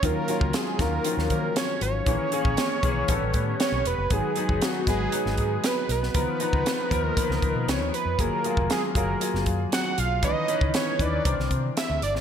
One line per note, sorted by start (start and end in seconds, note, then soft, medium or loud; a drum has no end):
0.03 0.12 D#2 medium
0.03 0.21 D#3 medium
0.03 0.21 F#3 medium
0.03 0.22 C#4 medium
0.03 0.22 F4 medium
0.03 0.57 A#4 loud
0.03 kick medium
0.03 closed hi-hat medium
0.28 0.65 D#3 medium
0.28 0.65 F#3 medium
0.28 0.65 C#4 medium
0.28 0.66 F4 medium
0.28 closed hi-hat medium
0.41 0.50 C#2 medium
0.41 kick medium
0.53 0.82 G#4 medium
0.53 snare loud
0.53 closed hi-hat medium
0.79 0.98 D#2 medium
0.79 0.97 D#3 medium
0.79 0.98 F#3 medium
0.79 0.98 C#4 medium
0.79 0.98 F4 medium
0.79 1.31 A#4 medium
0.79 kick medium
0.79 snare soft
0.79 closed hi-hat medium
1.04 1.78 D#3 medium
1.04 1.11 F3 soft
1.04 1.78 C#4 medium
1.04 1.79 F4 medium
1.04 closed hi-hat medium
1.10 1.81 F#3 medium
1.17 1.27 D#2 medium
1.17 snare soft
1.30 1.49 D#3 medium
1.30 1.58 A#4 medium
1.30 kick medium
1.30 closed hi-hat soft
1.56 1.82 C#5 loud
1.56 snare medium
1.56 closed hi-hat medium
1.81 2.00 G#1 medium
1.81 3.56 C#5 loud
1.81 closed hi-hat medium
2.06 2.16 A#1 medium
2.06 2.25 E3 medium
2.06 2.25 A#3 medium
2.06 2.26 C#4 medium
2.06 2.26 G#4 medium
2.06 kick medium
2.06 closed hi-hat medium
2.32 2.69 E3 medium
2.32 2.69 A#3 medium
2.32 2.69 C#4 medium
2.32 2.70 G#4 medium
2.32 closed hi-hat medium
2.45 2.54 A#1 medium
2.45 kick medium
2.57 snare medium
2.57 closed hi-hat medium
2.83 3.02 B1 medium
2.83 3.02 E3 medium
2.83 3.02 A#3 medium
2.83 3.02 C#4 medium
2.83 3.02 G#4 medium
2.83 kick medium
2.83 closed hi-hat medium
3.08 3.18 A1 medium
3.08 3.82 G3 medium
3.08 3.82 B3 medium
3.08 3.83 C#4 medium
3.08 3.83 A4 medium
3.08 kick medium
3.08 closed hi-hat medium
3.22 3.31 A1 medium
3.34 3.53 A2 medium
3.34 kick medium
3.34 closed hi-hat medium
3.60 3.84 C#5 medium
3.60 snare medium
3.60 closed hi-hat medium
3.72 3.82 B1 medium
3.85 3.95 E1 medium
3.85 4.14 B4 medium
3.85 closed hi-hat medium
3.98 4.07 F#1 medium
4.10 4.20 G#1 medium
4.10 4.29 F#3 medium
4.10 4.29 B3 medium
4.10 4.29 D#4 medium
4.10 4.29 G#4 medium
4.10 4.66 G#4 medium
4.10 kick loud
4.10 closed hi-hat medium
4.36 4.73 F#3 medium
4.36 4.73 B3 medium
4.36 4.73 D#4 medium
4.36 4.73 G#4 medium
4.36 closed hi-hat medium
4.49 4.58 F#1 medium
4.49 kick medium
4.62 4.89 F#4 medium
4.62 snare loud
4.62 closed hi-hat medium
4.87 5.06 G#1 medium
4.87 5.05 F#3 medium
4.87 5.06 B3 medium
4.87 5.06 D#4 medium
4.87 5.36 G#4 medium
4.87 5.06 B4 medium
4.87 kick medium
4.87 snare soft
4.87 closed hi-hat medium
5.12 5.86 F#3 medium
5.12 5.86 B3 medium
5.12 5.86 D#4 medium
5.12 5.86 G#4 medium
5.12 closed hi-hat medium
5.26 5.35 G#1 medium
5.26 snare soft
5.37 5.57 G#2 medium
5.37 5.67 G#4 medium
5.37 kick medium
5.37 closed hi-hat soft
5.64 5.90 B4 loud
5.64 snare medium
5.64 closed hi-hat medium
5.89 6.07 B1 medium
5.89 7.02 B4 loud
5.89 closed hi-hat medium
6.03 snare soft
6.14 6.24 C#2 medium
6.14 6.33 F3 medium
6.14 6.33 B3 medium
6.14 6.33 D#4 medium
6.14 6.34 A#4 medium
6.14 kick medium
6.14 closed hi-hat medium
6.40 6.77 F3 medium
6.40 6.77 B3 medium
6.40 6.77 D#4 medium
6.40 6.77 A#5 medium
6.40 closed hi-hat medium
6.53 6.62 C#2 medium
6.53 kick medium
6.66 snare medium
6.66 closed hi-hat medium
6.91 7.10 D#2 medium
6.91 7.09 F3 medium
6.91 7.10 B3 medium
6.91 7.10 D#4 medium
6.91 7.10 A#4 medium
6.91 kick medium
6.91 closed hi-hat medium
7.02 7.71 A#4 loud
7.16 7.90 F3 medium
7.16 7.90 B3 medium
7.16 7.90 D#4 medium
7.16 7.90 B4 medium
7.16 kick medium
7.16 closed hi-hat medium
7.30 7.39 C#2 medium
7.30 snare soft
7.42 7.52 C#2 medium
7.42 kick medium
7.42 closed hi-hat medium
7.55 7.64 B2 medium
7.68 7.80 C#2 medium
7.68 7.94 C#5 medium
7.68 snare loud
7.68 closed hi-hat medium
7.80 7.90 D#2 medium
7.94 8.22 B4 medium
7.94 closed hi-hat medium
8.05 8.15 F2 medium
8.19 8.28 F#1 medium
8.19 8.37 F#3 medium
8.19 8.37 A#3 medium
8.19 8.37 F4 medium
8.19 8.38 G#4 medium
8.19 8.71 A#4 medium
8.19 kick loud
8.19 closed hi-hat medium
8.44 8.81 F#3 medium
8.44 8.51 A3 soft
8.44 8.81 F4 medium
8.44 8.82 G#4 medium
8.44 closed hi-hat medium
8.51 8.84 A#3 medium
8.57 8.66 F1 medium
8.57 kick medium
8.70 8.83 G#4 medium
8.70 snare medium
8.70 closed hi-hat medium
8.95 9.14 F#1 medium
8.95 9.13 F#3 medium
8.95 9.14 A#3 medium
8.95 9.14 F4 medium
8.95 9.14 G#4 medium
8.95 9.44 A#4 medium
8.95 kick medium
8.95 closed hi-hat medium
9.20 9.94 F#3 medium
9.20 9.94 A#3 medium
9.20 9.94 F4 medium
9.20 9.95 G#4 medium
9.20 closed hi-hat medium
9.34 9.43 F#1 medium
9.34 snare soft
9.46 9.65 F#2 medium
9.46 kick medium
9.46 closed hi-hat medium
9.72 10.00 F#5 medium
9.72 snare loud
9.72 closed hi-hat medium
9.98 10.23 B1 medium
9.98 10.24 F5 medium
9.98 closed hi-hat medium
10.23 10.32 C#2 medium
10.23 10.41 E3 medium
10.23 10.41 C#4 medium
10.23 10.41 D#4 medium
10.23 10.42 B4 medium
10.23 10.71 D#5 loud
10.23 kick loud
10.23 closed hi-hat medium
10.48 10.85 E3 medium
10.48 10.85 C#4 medium
10.48 10.85 D#4 medium
10.48 10.85 B4 medium
10.48 closed hi-hat medium
10.61 10.70 C#2 medium
10.61 kick medium
10.74 11.03 C#5 medium
10.74 snare medium
10.74 closed hi-hat medium
10.99 11.18 D#2 medium
10.99 11.18 E3 medium
10.99 11.18 C#4 medium
10.99 11.18 D#4 medium
10.99 11.18 B4 medium
10.99 11.52 D5 medium
10.99 kick medium
10.99 closed hi-hat medium
11.25 11.34 C2 loud
11.25 11.98 E3 medium
11.25 11.99 C4 medium
11.25 11.99 D4 medium
11.25 11.99 A#4 medium
11.25 kick loud
11.25 closed hi-hat medium
11.38 11.47 C2 medium
11.38 snare soft
11.51 11.69 C3 medium
11.51 kick medium
11.51 closed hi-hat soft
11.77 12.00 E5 medium
11.77 snare medium
11.77 closed hi-hat medium
11.90 11.98 D2 medium
12.02 12.15 G1 medium
12.02 12.14 D5 medium
12.02 closed hi-hat medium
12.15 12.21 A1 medium
12.15 snare soft